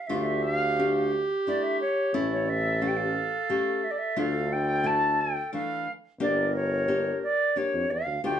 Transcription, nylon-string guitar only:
0.09 0.43 A3 medium
0.09 0.44 D4 medium
0.09 0.44 F4 medium
0.79 1.12 A3 medium
0.79 1.12 D4 medium
0.79 1.12 G4 medium
1.47 1.81 A3 medium
1.47 1.80 D4 medium
1.47 1.81 E4 medium
2.14 2.48 A3 medium
2.14 2.48 C#4 medium
2.14 2.48 E4 medium
2.82 3.16 A3 medium
2.82 3.16 C#4 medium
2.82 3.16 G4 medium
3.49 3.84 A3 medium
3.49 3.83 C#4 medium
3.49 3.84 G4 medium
4.16 4.51 A3 medium
4.16 4.51 D4 medium
4.16 4.51 F4 medium
4.83 5.19 A3 medium
4.83 5.18 D4 medium
4.83 5.18 E4 medium
5.53 5.87 E3 medium
5.53 5.87 A3 medium
5.53 5.87 D4 soft
6.20 6.54 A#3 medium
6.20 6.54 D4 medium
6.20 6.54 G4 medium
6.88 7.22 A#3 medium
6.88 7.22 D4 medium
6.88 7.22 G4 medium
7.56 7.90 A#3 medium
7.56 7.90 D4 medium
7.56 7.90 G4 medium
8.24 8.40 A3 medium
8.24 8.40 D4 medium
8.24 8.40 F4 medium

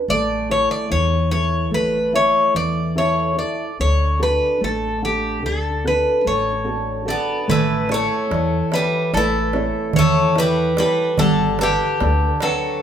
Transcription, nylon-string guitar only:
0.09 0.89 A3 medium
0.49 1.15 E4 soft
0.49 1.16 A4 soft
0.49 1.16 C#5 soft
0.90 1.70 E3 medium
1.31 1.98 E4 soft
1.31 1.98 A4 soft
1.31 1.98 C#5 medium
1.71 2.52 A3 medium
2.13 2.79 E4 soft
2.13 2.80 A4 soft
2.13 2.80 E5 medium
2.55 3.35 E3 medium
2.96 3.35 E4 soft
2.96 3.35 A4 soft
2.96 3.63 E5 medium
3.36 3.70 E4 soft
3.36 3.70 A4 soft
3.79 4.59 D3 medium
4.19 4.85 D4 soft
4.19 4.86 F#4 soft
4.19 4.86 A4 soft
4.61 5.41 A3 medium
5.02 5.68 D4 soft
5.02 5.69 A4 medium
5.02 5.68 F#5 soft
5.43 6.23 D3 medium
5.84 6.50 D4 medium
5.84 6.50 F#4 soft
5.84 6.51 A4 medium
6.24 7.05 A3 medium
6.64 7.05 D4 soft
6.64 7.04 F#4 soft
6.64 7.05 A4 medium
7.05 7.40 D4 soft
7.05 7.39 F#4 soft
7.05 7.40 A4 soft
7.48 8.28 A3 medium
7.89 8.55 E4 soft
7.89 8.55 A4 soft
7.89 8.56 C#5 medium
8.31 9.10 E3 medium
8.72 9.38 E4 soft
8.72 9.38 A4 soft
8.72 9.38 C#5 medium
9.15 9.94 A3 medium
9.54 10.20 E4 soft
9.54 10.19 A4 soft
9.54 10.20 C#5 medium
9.95 10.75 E3 medium
10.36 10.76 E4 medium
10.36 10.77 A4 soft
10.36 10.77 C#5 medium
10.77 11.10 E4 soft
10.77 11.10 A4 soft
10.77 11.10 C#5 medium
11.19 11.59 G3 medium
11.60 12.25 G4 soft
11.60 12.26 A4 soft
11.60 12.26 B4 soft
12.02 12.80 D3 medium
12.43 12.82 A4 soft
12.43 12.82 B4 medium
12.43 12.82 G5 soft

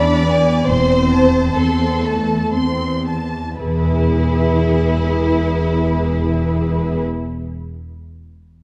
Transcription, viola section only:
0.00 0.28 D4 soft
0.28 0.68 B3 soft
0.68 1.54 C4 soft
1.57 2.03 C4 soft
2.04 2.53 A3 soft
2.54 3.08 C4 soft
3.60 7.02 E4 soft
3.60 7.02 G#4 soft

